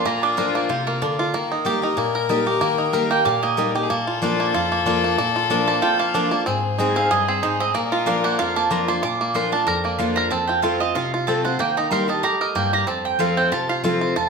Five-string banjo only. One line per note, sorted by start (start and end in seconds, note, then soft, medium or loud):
0.00 0.19 D4 medium
0.00 0.35 F4 medium
0.00 0.37 A#4 medium
0.06 0.55 A#3 medium
0.23 0.67 D4 medium
0.38 1.78 A#4 medium
0.55 0.87 A#3 medium
0.70 1.16 F4 medium
0.87 1.34 A#3 medium
1.02 1.34 D4 medium
1.19 1.34 F4 medium
1.34 1.98 A#3 medium
1.52 1.82 D#4 medium
1.66 2.12 G4 medium
1.83 2.27 D#4 medium
1.98 2.61 A#3 medium
2.15 2.93 A#4 medium
2.30 2.76 D#4 medium
2.47 2.91 G4 medium
2.61 3.10 A#3 medium
2.78 3.22 D#4 medium
2.93 4.33 A#4 medium
3.11 3.43 A#3 medium
3.25 3.71 G4 medium
3.43 3.90 A#3 medium
3.58 3.90 D#4 medium
3.75 3.90 G4 medium
3.90 4.40 A#3 medium
4.07 4.51 F4 medium
4.22 4.68 D4 medium
4.40 4.71 A#3 medium
4.54 5.00 F4 medium
4.72 5.03 A#3 medium
4.86 5.32 D4 medium
5.04 5.17 A#3 medium
5.18 5.64 A#3 medium
5.36 5.80 F4 medium
5.51 5.96 D4 medium
5.68 5.98 A#3 medium
5.82 6.28 F4 medium
6.00 6.30 A#3 medium
6.15 6.47 D4 medium
6.31 6.46 A#3 medium
6.46 6.92 C4 medium
6.78 7.24 D#4 medium
6.96 7.27 C4 medium
7.11 7.57 G#4 medium
7.28 7.59 C4 medium
7.43 7.75 D#4 medium
7.60 7.74 C4 medium
7.75 8.21 A#3 medium
7.92 8.36 F4 medium
8.07 8.53 D4 medium
8.24 8.55 A#3 medium
8.39 8.85 F4 medium
8.56 8.87 A#3 medium
8.71 9.03 D4 medium
8.88 9.03 A#3 medium
9.03 9.99 F4 medium
9.21 9.65 A#3 medium
9.35 9.66 A#4 medium
9.53 9.97 D4 medium
9.67 10.13 A#4 medium
9.85 10.29 A#3 medium
10.00 10.32 F4 medium
10.17 10.32 A#4 medium
10.32 10.78 C4 medium
10.49 10.62 F4 medium
10.63 10.80 F4 medium
10.81 10.95 F4 medium
10.96 11.13 F4 medium
11.14 11.44 F4 medium
11.28 11.60 C4 medium
11.45 11.60 F4 medium
11.60 12.06 A#3 medium
11.78 12.08 D#4 medium
11.92 12.38 A#4 medium
12.09 12.53 D#4 medium
12.24 12.70 G4 medium
12.41 12.85 A#4 medium
12.56 12.87 A#3 medium
12.73 12.88 G4 medium
12.87 13.37 C4 medium
13.20 13.52 F4 medium
13.37 13.81 C4 medium
13.52 13.69 F4 medium
13.69 13.84 F4 medium
13.84 14.01 F4 medium
14.01 14.16 F4 medium
14.16 14.29 F4 medium